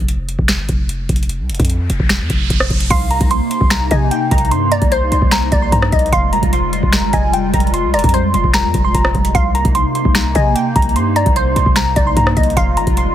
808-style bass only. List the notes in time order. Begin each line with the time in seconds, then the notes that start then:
0.00 F1
0.39 F1
0.59 G#1
0.69 F1
1.09 F1
1.39 C2
1.50 F1
1.60 F2
1.90 F1
2.00 F1
2.20 F2
2.30 F1
2.50 F1
2.70 F1
2.90 C2
3.21 C2
3.61 C2
3.91 C3
4.31 C2
4.51 G2
4.82 C2
5.12 C2
5.22 C2
5.52 C2
5.72 G2
5.92 C2
6.13 F1
6.33 G1
6.43 F1
6.83 F1
7.03 G#1
7.13 F1
7.54 F1
7.84 C2
7.94 F1
8.04 F2
8.34 F1
8.44 F1
8.64 F2
8.74 F1
8.94 F1
9.15 F1
9.35 C2
9.65 C2
10.05 C2
10.35 C3
10.76 C2
10.96 G2
11.26 C2
11.56 C2
11.66 C2
11.96 C2
12.17 G2
12.37 C2
12.57 F1
12.77 G1
12.87 F1